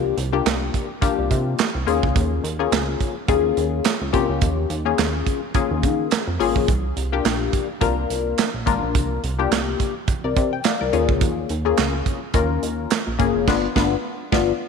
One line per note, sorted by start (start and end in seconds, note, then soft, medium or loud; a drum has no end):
0.00 0.13 C2 medium
0.00 0.16 A#3 loud
0.00 0.16 D4 medium
0.00 0.16 F4 medium
0.00 0.16 G4 loud
0.17 0.41 C2 loud
0.17 closed hi-hat medium
0.32 0.88 A#3 medium
0.32 0.88 D4 medium
0.32 0.88 F4 medium
0.32 0.88 G4 medium
0.46 0.70 C2 medium
0.46 snare loud
0.46 clap medium
0.46 closed hi-hat medium
0.74 kick medium
0.74 closed hi-hat medium
1.01 1.69 A#3 medium
1.01 1.69 D4 medium
1.01 1.69 F4 medium
1.01 1.70 G4 loud
1.01 kick loud
1.01 closed hi-hat medium
1.19 1.29 C2 medium
1.31 1.55 C3 loud
1.31 kick medium
1.31 closed hi-hat medium
1.59 snare loud
1.59 clap medium
1.59 closed hi-hat loud
1.75 1.85 C2 medium
1.86 2.01 D#2 loud
1.86 2.43 A#3 medium
1.86 2.44 C#4 medium
1.86 2.44 F4 medium
1.86 2.44 G#4 loud
1.86 closed hi-hat medium
2.03 2.14 C#2 medium
2.03 kick medium
2.16 2.40 D#2 loud
2.16 kick loud
2.16 closed hi-hat medium
2.44 2.68 D#2 loud
2.44 closed hi-hat medium
2.59 3.14 A#3 medium
2.59 3.14 C#4 medium
2.59 3.15 F4 medium
2.59 3.15 G#4 loud
2.72 2.96 C#2 loud
2.72 snare loud
2.72 clap loud
2.72 closed hi-hat medium
3.00 kick medium
3.00 closed hi-hat medium
3.28 3.53 D#2 loud
3.28 3.96 A#3 medium
3.28 3.96 C#4 medium
3.28 3.96 F4 medium
3.28 3.96 G#4 loud
3.28 kick loud
3.28 closed hi-hat medium
3.57 3.81 D#2 medium
3.57 closed hi-hat medium
3.85 snare loud
3.85 clap medium
3.85 closed hi-hat loud
4.01 4.12 C#2 medium
4.13 4.27 C2 medium
4.13 4.68 A#3 loud
4.13 4.69 C#4 medium
4.13 4.69 F4 medium
4.13 4.69 G4 loud
4.13 kick medium
4.13 closed hi-hat medium
4.29 4.40 C#2 medium
4.41 4.66 D#2 loud
4.41 kick loud
4.41 closed hi-hat medium
4.70 4.94 D#2 loud
4.70 closed hi-hat medium
4.85 5.41 A#3 medium
4.85 5.41 C#4 medium
4.85 5.41 F4 medium
4.85 5.41 G#4 medium
4.98 5.23 D#2 medium
4.98 snare loud
4.98 clap medium
4.98 closed hi-hat medium
5.27 kick medium
5.27 closed hi-hat medium
5.54 6.22 A#3 medium
5.54 6.22 C#4 medium
5.54 6.22 F4 medium
5.54 6.23 G#4 loud
5.54 kick loud
5.54 closed hi-hat medium
5.71 5.85 D#2 medium
5.83 6.07 D#3 loud
5.83 kick medium
5.83 closed hi-hat medium
6.11 snare loud
6.11 clap medium
6.11 closed hi-hat loud
6.28 6.38 F2 medium
6.39 6.54 G#1 medium
6.39 6.68 A#3 medium
6.39 6.68 C#4 medium
6.39 6.68 F4 medium
6.39 6.68 G#4 loud
6.39 open hi-hat medium
6.56 6.66 A#1 medium
6.56 kick medium
6.68 6.92 C2 loud
6.68 kick loud
6.68 closed hi-hat loud
6.97 7.21 C2 loud
6.97 closed hi-hat medium
7.12 7.67 A#3 medium
7.12 7.67 D4 medium
7.12 7.68 F4 medium
7.12 7.68 G4 medium
7.25 7.49 A#1 medium
7.25 snare loud
7.25 clap medium
7.25 closed hi-hat loud
7.53 kick medium
7.53 closed hi-hat medium
7.81 8.05 C2 loud
7.81 8.48 A#3 medium
7.81 8.49 D4 medium
7.81 8.49 F4 medium
7.81 8.49 A#4 medium
7.81 kick loud
7.81 closed hi-hat medium
8.10 8.34 C2 medium
8.10 closed hi-hat medium
8.38 snare loud
8.38 clap medium
8.38 closed hi-hat loud
8.54 8.65 A#1 medium
8.66 8.80 G#1 medium
8.66 9.22 A#3 loud
8.66 9.22 D4 medium
8.66 9.22 F4 medium
8.66 9.22 A#4 loud
8.66 kick medium
8.66 closed hi-hat medium
8.83 8.96 A#1 medium
8.95 9.19 C2 loud
8.95 kick loud
8.95 closed hi-hat medium
9.23 9.47 C2 loud
9.23 closed hi-hat medium
9.39 9.94 A#3 medium
9.39 9.94 D4 medium
9.39 9.94 F4 medium
9.39 9.94 G4 medium
9.51 9.75 C2 medium
9.51 snare loud
9.51 clap loud
9.51 closed hi-hat loud
9.80 kick medium
9.80 closed hi-hat medium
10.08 kick loud
10.08 closed hi-hat medium
10.24 10.35 C2 loud
10.24 10.51 A#4 medium
10.24 10.51 D5 medium
10.37 10.60 C3 loud
10.37 kick loud
10.37 closed hi-hat medium
10.53 10.64 G5 medium
10.64 10.80 D5 medium
10.64 10.80 F5 medium
10.64 snare loud
10.64 clap medium
10.64 closed hi-hat loud
10.81 10.91 C2 medium
10.81 11.08 A#4 medium
10.81 11.07 D5 medium
10.93 11.07 D#2 loud
10.93 11.49 A#3 medium
10.93 11.50 C#4 medium
10.93 11.50 F4 medium
10.93 11.50 G#4 medium
10.93 closed hi-hat medium
11.09 11.19 C#2 medium
11.09 kick loud
11.21 11.45 D#2 loud
11.21 kick loud
11.21 closed hi-hat loud
11.49 11.74 D#2 loud
11.49 closed hi-hat medium
11.65 12.20 A#3 medium
11.65 12.20 C#4 medium
11.65 12.20 F4 medium
11.65 12.21 G#4 medium
11.77 12.02 C#2 medium
11.77 snare loud
11.77 clap loud
11.77 closed hi-hat medium
12.06 kick medium
12.06 closed hi-hat medium
12.34 12.58 D#2 loud
12.34 13.01 A#3 medium
12.34 13.01 C#4 medium
12.34 13.02 F4 medium
12.34 13.02 A#4 loud
12.34 kick loud
12.34 closed hi-hat medium
12.63 12.87 D#2 medium
12.63 closed hi-hat medium
12.90 snare loud
12.90 clap medium
12.90 closed hi-hat loud
13.07 13.17 A#1 medium
13.19 13.33 G1 medium
13.19 13.47 A#3 loud
13.19 13.47 C#4 medium
13.19 13.47 F4 medium
13.19 13.48 G#4 loud
13.19 kick medium
13.19 closed hi-hat medium
13.35 13.47 F1 medium
13.47 13.67 G1 loud
13.47 13.67 B3 loud
13.47 13.68 D4 loud
13.47 13.68 F4 loud
13.47 kick loud
13.47 snare loud
13.47 crash medium
13.76 13.96 G1 loud
13.76 13.96 B3 loud
13.76 13.96 D4 loud
13.76 13.96 F4 loud
13.76 kick loud
13.76 snare loud
14.32 14.52 G1 loud
14.32 14.52 B3 loud
14.32 14.52 D4 loud
14.32 14.52 F4 loud
14.32 kick loud
14.32 snare medium